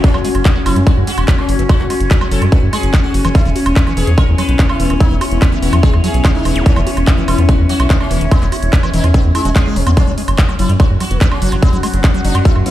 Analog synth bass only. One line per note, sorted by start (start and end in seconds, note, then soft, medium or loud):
0.14 0.21 F#1 medium
0.35 0.42 F#1 medium
0.66 0.73 F#1 loud
0.76 0.83 F#2 medium
0.97 1.04 F#2 medium
1.18 1.25 E1 medium
1.49 1.56 F#1 loud
1.59 1.66 F#1 medium
1.80 1.87 F#1 medium
2.00 2.08 F#1 medium
2.31 2.39 F#1 medium
2.42 2.49 F#2 medium
2.63 2.70 F#2 medium
2.83 2.90 F#1 medium
3.14 3.21 F#1 medium
3.25 3.32 F#1 medium
3.45 3.52 E1 medium
3.66 3.73 E1 medium
3.97 4.04 E1 loud
4.07 4.14 E2 medium
4.28 4.35 E2 medium
4.49 4.56 B1 medium
4.80 4.87 E1 loud
4.90 4.97 E1 medium
5.11 5.18 E1 medium
5.31 5.39 E1 medium
5.62 5.70 E1 loud
5.73 5.80 E2 medium
5.94 6.01 E2 medium
6.14 6.21 B1 medium
6.45 6.52 E1 loud
6.56 6.63 E1 medium
6.76 6.83 E1 medium
6.97 7.04 E1 medium
7.28 7.35 E1 loud
7.38 7.45 E2 medium
7.59 7.66 E2 medium
7.80 7.87 B1 medium
8.11 8.18 E1 loud
8.21 8.28 E1 medium
8.42 8.49 E1 medium
8.63 8.70 E1 medium
8.94 9.01 E1 medium
9.04 9.11 E2 medium
9.25 9.32 E2 medium
9.45 9.52 E1 medium
9.76 9.83 E1 loud
9.87 9.94 E2 medium
10.07 10.14 F#1 medium
10.28 10.35 F#1 medium
10.59 10.66 F#1 loud
10.69 10.76 F#2 medium
10.90 10.97 F#2 medium
11.11 11.18 E1 medium
11.42 11.49 F#1 loud
11.52 11.59 F#1 medium
11.73 11.80 F#1 medium
11.94 12.01 F#1 medium
12.25 12.32 F#1 loud
12.35 12.42 F#2 medium
12.56 12.63 F#2 medium